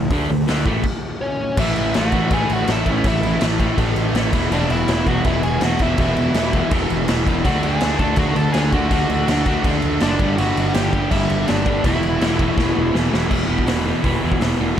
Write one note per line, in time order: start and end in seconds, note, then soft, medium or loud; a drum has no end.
0.00 0.10 A2 medium
0.00 0.10 E3 medium
0.10 0.26 D2 loud
0.10 0.29 D3 medium
0.10 0.29 A3 medium
0.10 0.30 D4 medium
0.10 kick loud
0.10 open hi-hat medium
0.30 0.45 D2 medium
0.30 0.46 D3 medium
0.30 0.47 A3 medium
0.47 0.64 D2 medium
0.47 0.65 D3 medium
0.47 0.65 A3 medium
0.47 0.66 D4 loud
0.47 snare loud
0.47 open hi-hat medium
0.66 0.81 A1 medium
0.66 0.84 A2 medium
0.66 0.84 E3 medium
0.66 0.84 A3 loud
0.66 kick loud
0.83 kick loud
0.83 crash loud
1.22 1.57 C#4 medium
1.22 1.60 C#5 medium
1.57 1.72 A1 loud
1.57 1.96 A2 medium
1.57 1.96 E3 loud
1.57 1.97 A3 medium
1.57 1.93 E4 medium
1.57 1.96 E5 loud
1.57 kick loud
1.57 crash loud
1.57 crash medium
1.76 1.91 A1 medium
1.76 crash medium
1.94 2.10 A1 medium
1.94 2.12 A2 medium
1.94 2.14 E3 loud
1.94 2.14 A3 medium
1.94 2.30 F#4 medium
1.94 2.34 F#5 loud
1.94 snare loud
1.94 crash medium
2.12 2.27 A1 medium
2.12 2.31 A2 medium
2.12 2.32 E3 medium
2.12 2.31 A3 medium
2.12 kick medium
2.12 crash medium
2.31 2.45 A1 loud
2.31 2.67 A2 loud
2.31 2.69 E3 loud
2.31 2.69 A3 loud
2.31 2.50 G#4 medium
2.31 2.50 G#5 loud
2.31 kick loud
2.31 crash medium
2.50 2.64 A1 loud
2.50 2.69 F#4 medium
2.50 2.71 F#5 medium
2.50 crash medium
2.67 2.82 A1 loud
2.67 2.85 A2 medium
2.67 2.86 E3 loud
2.67 2.86 A3 loud
2.67 2.87 E4 medium
2.67 snare loud
2.67 crash medium
2.72 2.92 E5 medium
2.86 3.00 A1 medium
2.86 3.04 A2 medium
2.86 3.06 E3 medium
2.86 3.06 A3 medium
2.86 3.06 C#4 medium
2.86 kick medium
2.86 crash medium
2.92 3.08 C#5 medium
3.04 3.19 A1 loud
3.04 3.40 A2 loud
3.04 3.42 E3 loud
3.04 3.42 A3 loud
3.04 3.41 E4 medium
3.04 kick loud
3.04 crash loud
3.09 3.42 E5 medium
3.21 3.36 A1 loud
3.21 crash medium
3.41 3.69 A1 medium
3.41 3.58 A2 medium
3.41 3.59 E3 loud
3.41 3.59 A3 medium
3.41 snare loud
3.41 crash loud
3.59 3.76 A2 medium
3.59 3.78 E3 medium
3.59 3.77 A3 medium
3.59 kick medium
3.59 crash medium
3.77 3.92 A1 loud
3.77 4.14 A2 loud
3.77 4.16 E3 loud
3.77 4.15 A3 loud
3.77 kick loud
3.77 crash medium
3.95 4.10 A1 medium
3.95 crash medium
4.13 4.28 A1 loud
4.13 4.32 A2 medium
4.13 4.33 E3 loud
4.13 4.33 A3 loud
4.13 snare loud
4.13 crash medium
4.32 4.47 E1 medium
4.32 4.52 E2 loud
4.32 4.52 B2 loud
4.32 4.53 E3 loud
4.32 kick loud
4.32 crash loud
4.50 4.64 E1 loud
4.50 4.87 E2 medium
4.50 4.86 B2 loud
4.50 4.70 D4 medium
4.50 4.71 D5 medium
4.50 crash medium
4.54 4.88 E3 loud
4.69 4.83 E1 medium
4.69 5.05 E4 medium
4.69 5.08 E5 loud
4.69 crash medium
4.87 5.02 E1 medium
4.87 5.07 E2 medium
4.87 5.07 B2 medium
4.87 5.08 E3 loud
4.87 snare loud
4.87 crash medium
5.06 5.20 E1 medium
5.06 5.25 E2 medium
5.06 5.25 B2 medium
5.06 5.26 E3 medium
5.06 5.25 F#4 medium
5.06 5.25 F#5 medium
5.06 kick medium
5.06 crash medium
5.24 5.39 E1 loud
5.24 5.63 E2 loud
5.24 5.63 B2 loud
5.24 5.63 E3 loud
5.24 5.43 E4 medium
5.24 5.45 E5 loud
5.24 kick loud
5.24 crash medium
5.42 5.57 E1 medium
5.42 5.61 G#4 medium
5.42 5.63 G#5 loud
5.42 crash medium
5.60 5.75 E1 medium
5.60 5.81 E2 medium
5.60 5.81 B2 medium
5.60 5.79 F#4 medium
5.60 5.82 F#5 medium
5.60 snare loud
5.60 crash medium
5.65 5.82 E3 loud
5.79 5.94 E1 medium
5.79 5.98 E2 medium
5.79 5.99 B2 medium
5.79 5.98 E4 medium
5.79 5.99 E5 medium
5.79 kick medium
5.79 crash medium
5.83 6.00 E3 loud
5.98 6.13 E1 loud
5.98 6.35 E2 loud
5.98 6.34 B2 loud
5.98 6.36 E3 loud
5.98 6.69 E4 medium
5.98 6.69 E5 medium
5.98 kick loud
5.98 crash medium
6.16 6.30 E1 medium
6.16 crash medium
6.34 6.62 E1 medium
6.34 6.53 E2 medium
6.34 6.54 B2 medium
6.34 6.53 E3 loud
6.34 snare loud
6.34 crash medium
6.53 6.70 E2 medium
6.53 6.71 B2 medium
6.53 6.71 E3 medium
6.53 kick medium
6.53 crash medium
6.71 6.85 E1 loud
6.71 7.07 E2 loud
6.71 7.08 B2 loud
6.71 7.09 E3 loud
6.71 kick loud
6.71 crash loud
6.90 7.04 E1 medium
6.90 crash medium
7.07 7.21 E1 medium
7.07 7.27 E2 medium
7.07 7.27 B2 loud
7.07 7.28 E3 loud
7.07 snare loud
7.07 crash loud
7.26 7.47 E1 medium
7.26 7.45 E2 medium
7.26 7.45 B2 medium
7.26 7.45 E3 medium
7.26 kick medium
7.26 crash medium
7.45 7.59 D2 loud
7.45 7.82 D3 loud
7.45 7.83 A3 loud
7.45 7.84 D4 loud
7.45 7.63 F#4 medium
7.45 7.63 F#5 loud
7.45 kick loud
7.45 crash medium
7.63 7.77 D2 medium
7.63 7.98 G#4 medium
7.63 7.99 G#5 loud
7.63 crash medium
7.81 7.95 D2 medium
7.81 7.99 D3 medium
7.81 8.00 A3 medium
7.81 8.01 D4 loud
7.81 snare loud
7.81 crash medium
7.99 8.13 D2 medium
7.99 8.17 D3 medium
7.99 8.18 A3 medium
7.99 8.19 D4 medium
7.99 8.17 A4 medium
7.99 8.17 A5 medium
7.99 kick medium
7.99 crash medium
8.16 8.31 D2 loud
8.16 8.53 D3 loud
8.16 8.54 A3 loud
8.16 8.56 D4 loud
8.16 8.35 F#4 medium
8.16 8.36 F#5 loud
8.16 kick loud
8.16 crash medium
8.35 8.49 D2 medium
8.35 8.52 A4 medium
8.35 8.52 A5 medium
8.35 crash medium
8.52 8.68 D2 medium
8.52 8.71 D3 medium
8.52 8.72 A3 medium
8.52 8.73 D4 medium
8.52 8.71 G#4 medium
8.52 8.71 G#5 loud
8.52 snare loud
8.52 crash medium
8.72 8.86 D2 medium
8.72 8.90 D3 medium
8.72 8.91 A3 medium
8.72 8.93 D4 medium
8.72 8.90 F#4 medium
8.72 8.93 F#5 medium
8.72 kick medium
8.72 crash medium
8.91 9.05 D2 loud
8.91 9.27 D3 medium
8.91 9.29 A3 loud
8.91 9.30 D4 loud
8.91 9.61 F#4 medium
8.91 9.62 F#5 medium
8.91 kick loud
8.91 crash medium
9.10 9.24 D2 medium
9.10 crash medium
9.28 9.55 D2 medium
9.28 9.46 D3 medium
9.28 9.47 A3 medium
9.28 9.49 D4 medium
9.28 snare loud
9.28 crash loud
9.46 9.64 D3 medium
9.46 9.65 A3 loud
9.46 9.65 D4 medium
9.46 kick medium
9.46 crash medium
9.64 9.78 D2 medium
9.64 10.01 D3 loud
9.64 10.01 A3 loud
9.64 10.02 D4 loud
9.64 kick loud
9.64 crash medium
9.82 9.97 D2 medium
9.82 crash medium
10.00 10.16 F#1 loud
10.00 10.19 D3 medium
10.00 10.19 A3 medium
10.00 10.36 D4 medium
10.00 10.20 D4 medium
10.00 10.39 D5 medium
10.00 snare loud
10.00 crash medium
10.19 10.34 G1 medium
10.19 10.38 G2 loud
10.19 10.38 D3 loud
10.19 10.39 G3 loud
10.19 kick loud
10.19 crash medium
10.38 10.51 G1 loud
10.38 10.74 G2 loud
10.38 10.75 D3 loud
10.38 10.76 G3 loud
10.38 10.66 F#4 medium
10.38 10.65 F#5 loud
10.38 crash loud
10.56 10.70 G1 medium
10.56 crash medium
10.68 10.74 F#5 medium
10.74 10.88 G1 medium
10.74 10.92 G2 medium
10.74 10.93 D3 loud
10.74 10.93 G3 medium
10.74 11.09 G4 medium
10.74 11.09 G5 loud
10.74 snare loud
10.74 crash medium
10.93 11.06 G1 medium
10.93 11.09 G2 medium
10.93 11.10 D3 medium
10.93 11.11 G3 loud
10.93 kick medium
10.93 crash medium
11.11 11.25 G1 loud
11.11 11.45 G2 loud
11.11 11.46 D3 loud
11.11 11.47 G3 loud
11.11 11.46 E4 medium
11.11 11.49 E5 medium
11.11 kick loud
11.11 crash medium
11.30 11.44 G1 medium
11.30 crash medium
11.46 11.63 G1 medium
11.46 11.65 G2 medium
11.46 11.65 D3 medium
11.46 11.66 G3 medium
11.46 11.82 D4 medium
11.46 11.82 D5 medium
11.46 snare loud
11.46 crash medium
11.66 11.80 G1 medium
11.66 11.83 G2 medium
11.66 11.84 D3 loud
11.66 11.84 G3 medium
11.66 kick medium
11.66 crash medium
11.84 11.98 E1 loud
11.84 12.19 E2 loud
11.84 12.20 B2 loud
11.84 12.21 E3 loud
11.84 12.91 E4 medium
11.84 12.59 E5 medium
11.84 kick loud
11.84 crash medium
12.03 12.17 E1 medium
12.03 crash medium
12.21 12.49 E1 medium
12.21 12.36 E2 medium
12.21 12.37 B2 medium
12.21 12.39 E3 medium
12.21 snare loud
12.21 crash medium
12.37 12.55 E2 medium
12.37 12.56 B2 medium
12.37 12.56 E3 medium
12.37 kick loud
12.37 crash medium
12.57 12.71 E1 medium
12.57 12.91 E2 loud
12.57 12.91 B2 loud
12.57 12.92 E3 loud
12.57 12.91 D5 medium
12.57 kick loud
12.57 snare medium
12.76 12.90 E1 loud
12.92 13.08 E1 loud
12.92 13.09 E2 medium
12.92 13.10 B2 medium
12.92 13.11 E3 medium
12.92 snare loud
13.10 13.31 E1 medium
13.10 13.27 E2 medium
13.10 13.27 B2 medium
13.10 13.29 E3 medium
13.10 snare loud
13.28 13.43 E1 loud
13.28 13.48 E2 medium
13.28 13.48 B2 loud
13.28 13.49 E3 loud
13.28 kick loud
13.28 crash loud
13.48 13.61 E1 medium
13.48 13.65 E2 medium
13.48 13.66 B2 medium
13.48 13.67 E3 medium
13.59 kick medium
13.66 13.91 E1 medium
13.66 13.85 E2 loud
13.66 13.85 B2 medium
13.66 13.86 E3 loud
13.66 snare loud
13.66 open hi-hat medium
13.85 14.03 E2 medium
13.85 14.03 B2 medium
13.85 14.04 E3 medium
14.03 14.17 E1 medium
14.03 14.22 E2 medium
14.03 14.22 B2 loud
14.03 14.23 E3 loud
14.03 kick loud
14.03 open hi-hat medium
14.22 14.40 E2 medium
14.22 14.36 E2 medium
14.22 14.40 B2 medium
14.22 14.42 E3 loud
14.32 kick medium
14.40 14.53 E1 medium
14.40 14.59 E2 loud
14.40 14.59 B2 loud
14.40 14.60 E3 loud
14.40 snare loud
14.40 open hi-hat medium
14.59 14.72 E1 medium
14.59 14.75 E2 medium
14.59 14.76 B2 medium
14.59 14.77 E3 medium
14.76 14.80 E2 medium